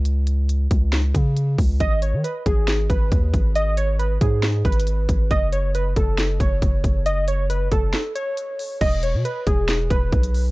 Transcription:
<<
  \new Staff \with { instrumentName = "Synth keys" } { \time 4/4 \key fis \dorian \tempo 4 = 137 r1 | dis''8 cis''8 b'8 gis'4 b'4. | dis''8 cis''8 b'8 gis'4 b'4. | dis''8 cis''8 b'8 a'4 cis''4. |
dis''8 cis''8 b'8 a'4 cis''4. | dis''8 cis''8 b'8 gis'4 b'4. | }
  \new Staff \with { instrumentName = "808-style bass" } { \clef bass \time 4/4 \key fis \dorian cis,4. cis,4 cis4 cis,8 | gis,,8. dis16 r8 gis,,4 gis,,8 dis,8 gis,,8~ | gis,,4. gis,4 gis,,4 gis,,8 | fis,,4. fis,,4 fis,,8 fis,,8 fis,,8~ |
fis,,4. fis,,8 r2 | e,,8. b,16 r8 e,,4 e,,8 b,,4 | }
  \new DrumStaff \with { instrumentName = "Drums" } \drummode { \time 4/4 hh8 hh8 hh8 <hh bd>8 <hh sn>8 <hh bd>8 hh8 <hho bd>8 | <hh bd>8 hh8 hh8 <hh bd>8 <hh sn>8 <hh bd>8 <hh bd>8 <hh bd>8 | hh8 hh8 hh8 <hh bd>8 \tuplet 3/2 { <hh sn>16 r16 r16 <hh bd>16 hh16 hh16 } hh8 <hh bd>8 | <hh bd>8 hh8 hh8 <hh bd>8 <hh sn>8 <hh bd>8 <hh bd>8 <hh bd>8 |
hh8 hh8 hh8 <hh bd>8 <hh sn>8 hh8 hh8 hho8 | <cymc hh bd>8 hh8 hh8 <hh bd>8 <hh sn>8 <hh bd>8 <hh bd>16 hh16 hho8 | }
>>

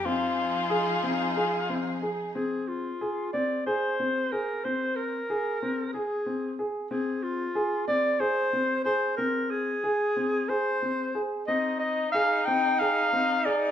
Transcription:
<<
  \new Staff \with { instrumentName = "Celesta" } { \time 7/8 \key f \dorian \tempo 4 = 92 r4 ees'''2~ ees'''8 | r2. r8 | r2. r8 | r2. r8 |
r2. r8 | r2. r8 | }
  \new Staff \with { instrumentName = "Clarinet" } { \time 7/8 \key f \dorian r2. r8 | aes'8 f'4 d''8 c''4 bes'8 | c''8 bes'4. aes'4 r8 | aes'8 f'4 d''8 c''4 c''8 |
bes'8 aes'4. c''4 r8 | ees''8 ees''8 f''8 g''8 f''4 d''8 | }
  \new Staff \with { instrumentName = "Grand piano" } { \time 7/8 \key f \dorian c'4 aes'8 c'8 aes'8 c'8 aes'8 | c'4 aes'8 c'8 aes'8 c'8 aes'8 | c'4 aes'8 c'8 aes'8 c'8 aes'8 | c'4 aes'8 c'8 aes'8 c'8 aes'8 |
c'4 aes'8 c'8 aes'8 c'8 aes'8 | c'4 aes'8 c'8 aes'8 c'8 aes'8 | }
  \new Staff \with { instrumentName = "Soprano saxophone" } { \time 7/8 \key f \dorian f'2. r8 | r2. r8 | r2. r8 | r2. r8 |
r2. r8 | ees'2.~ ees'8 | }
  \new Staff \with { instrumentName = "String section" } { \time 7/8 \key f \dorian <f ees' aes'>2.~ <f ees' aes'>8 | r2. r8 | r2. r8 | r2. r8 |
r2. r8 | r2. r8 | }
>>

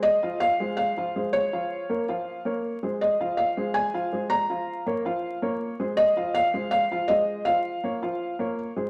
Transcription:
<<
  \new Staff \with { instrumentName = "Felt piano" } { \time 4/4 \key f \minor \tempo 4 = 162 ees''4 f''4 f''4. des''8~ | des''4. r2 r8 | ees''4 f''4 aes''4. bes''8~ | bes''4. r2 r8 |
ees''4 f''4 f''4 ees''4 | f''2. r4 | }
  \new Staff \with { instrumentName = "Upright piano" } { \time 4/4 \key f \minor <aes aes' c''>8 <f f' f''>4 <aes aes' c''>4 <f f' f''>8 <aes aes' c''>4 | <f f' f''>4 <bes bes' des''>8 <f f' f''>4 <bes bes' des''>4 <aes aes' c''>8~ | <aes aes' c''>8 <f f' f''>4 <aes aes' c''>4 <f f' f''>8 <aes aes' c''>4 | <f f' f''>4 <bes bes' des''>8 <f f' f''>4 <bes bes' des''>4 <aes aes' c''>8~ |
<aes aes' c''>8 <f f' f''>4 <aes aes' c''>4 <f f' f''>8 <aes aes' c''>4 | <f f' f''>4 <bes bes' des''>8 <f f' f''>4 <bes bes' des''>4 <aes aes' c''>8 | }
>>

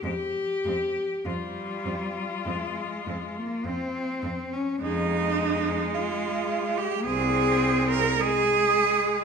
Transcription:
<<
  \new Staff \with { instrumentName = "Cello" } { \time 4/4 \key f \minor \tempo 4 = 52 g'4 f'2~ f'8 r8 | aes'16 aes'16 aes'16 aes'16 aes'16 aes'16 aes'16 aes'16 aes'16 aes'16 aes'16 aes'16 aes'16 aes'16 aes'16 aes'16 | }
  \new Staff \with { instrumentName = "Cello" } { \time 4/4 \key f \minor c'8 c'8 c'8 c'8 c'8 c'8 c'8 c'8 | ees'4 f'8. g'16 aes'8. bes'16 aes'4 | }
  \new Staff \with { instrumentName = "Cello" } { \clef bass \time 4/4 \key f \minor aes8 aes8 g4 aes8. bes16 c'8. des'16 | aes2 c'4 aes4 | }
  \new Staff \with { instrumentName = "Cello" } { \clef bass \time 4/4 \key f \minor f,8 f,8 f,8 f,8 f,8 f,8 f,8 f,8 | f,4 r4 c,4 r4 | }
>>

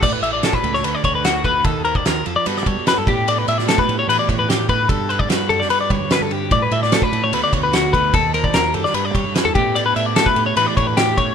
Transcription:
<<
  \new Staff \with { instrumentName = "Clean electric guitar" } { \time 4/4 \key a \mixolydian \tempo 4 = 148 d''16 b'16 e''16 d''16 a'16 b'8 cis''16 b'16 d''16 cis''16 b'16 fis'8 b'8 | a'8 bes'16 d''16 bes'8 a'16 d''16 b'16 d''16 cis''8 b'16 a'16 g'8 | d''16 b'16 e''16 d''16 a'16 b'8 cis''16 b'16 d''16 cis''16 b'16 g'8 b'8 | a'8 b'16 d''16 b'8 a'16 d''16 b'16 d''16 cis''8 b'16 a'16 g'8 |
d''16 b'16 e''16 d''16 a'16 b'8 cis''16 b'16 d''16 cis''16 b'16 fis'8 b'8 | a'8 bes'16 d''16 bes'8 a'16 d''16 b'16 d''16 cis''8 b'16 a'16 g'8 | d''16 b'16 e''16 d''16 a'16 b'8 cis''16 b'16 d''16 cis''16 b'16 g'8 cis''8 | }
  \new Staff \with { instrumentName = "Clean electric guitar" } { \time 4/4 \key a \mixolydian << { r8 g'16 a'16 d'4. d''8 fis'4 | r8 c''4. <g b fis' a'>8 a'8 fis'8 <a b d' g'>8 | a'8 d'4 g'4 d'8 g'4~ | g'8 a'8 fis'4 b'2 |
r8 a'8 d'4 <a b fis' b'>8 d''8 fis'4 | r8 c''8 f'4 r8 g'16 a'16 fis'8 <a b d' g'>8 | g'16 a'16 d'4 g'4 d'8 g'4 | } \\ { a,4. a8 d4. a8 | ees4 ees8 f8 g,4. a,8~ | a,4 a4 e4. a,8 | g,4. g4 d4 g,8 |
a,4. a8 d4. a8 | ees4. g8 g,4. a,8~ | a,4 a4 e4. a,8 | } >> }
  \new Staff \with { instrumentName = "Fingered electric bass" } { \clef bass \time 4/4 \key a \mixolydian a,,16 r16 a,,8 r8 cis,8 d,16 r16 d,4. | ees,4 ees,8 f,16 r16 g,8 g16 g,16 r16 g,16 a,8~ | a,8 a,8 r8 a,8 a,16 r16 a,4. | g,4 g,8 fis,8 r8 g16 g,16 r16 g,8. |
a,16 r16 a,8 r8 a,8 d,16 r16 d,4. | ees,4 ees,8 fis,16 r16 g,8 g16 g,16 r16 e,16 a,8~ | a,8 a,8 r8 a,8 a,16 r16 a,4. | }
  \new DrumStaff \with { instrumentName = "Drums" } \drummode { \time 4/4 <cymc bd>8 cymr8 <cymr sn>16 bd16 cymr16 sn16 cymr8 <bd cymr>8 <cymr sn>8 <bd cymr>8 | <bd cymr>8 cymr16 bd16 <cymr sn>8 cymr8 cymr16 sn16 <bd cymr>8 <cymr sn>8 <bd cymr>8 | cymr8 cymr16 sn16 <cymr sn>16 bd16 cymr8 cymr8 <bd cymr>8 <cymr sn>8 <bd cymr>8 | <bd cymr>8 cymr16 bd16 <cymr sn>8 cymr16 sn16 cymr8 <bd cymr>8 <cymr sn>8 cymr8 |
<bd cymr>8 cymr16 sn16 <cymr sn>16 bd16 cymr8 cymr8 <bd cymr>8 <cymr sn>8 <bd cymr>8 | <bd cymr>8 cymr16 bd16 <cymr sn>8 cymr16 sn16 cymr8 <bd cymr>8 <cymr sn>8 <bd cymr>8 | cymr8 cymr8 <cymr sn>16 bd16 cymr8 cymr8 <bd cymr>8 <cymr sn>8 <bd cymr>8 | }
>>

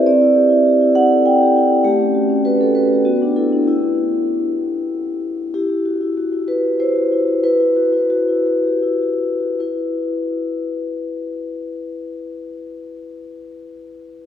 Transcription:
\new Staff \with { instrumentName = "Vibraphone" } { \time 3/4 \key e \minor \tempo 4 = 96 << { d''4. fis''8 g''4 | g'4 b'16 a'16 b'8 fis'16 d'16 e'16 d'16 | e'2~ e'8 r8 | g'4. b'8 c''4 |
b'4 fis'2 | <e' b'>2.~ | <e' b'>2. | } \\ { c'16 e'16 g'16 e'16 g'16 e'16 g'16 a'16 e'16 g'16 e'16 g'16 | a16 cis'16 fis'16 cis'16 fis'16 cis'16 fis'16 g'16 b8 a'8 | g'2. | e'16 e'16 fis'16 e'16 fis'16 e'16 fis'16 g'16 e'16 fis'16 e'16 fis'16 |
e'16 e'16 fis'16 e'8 e'16 fis'16 g'16 e'16 fis'16 e'16 fis'16 | r2. | r2. | } >> }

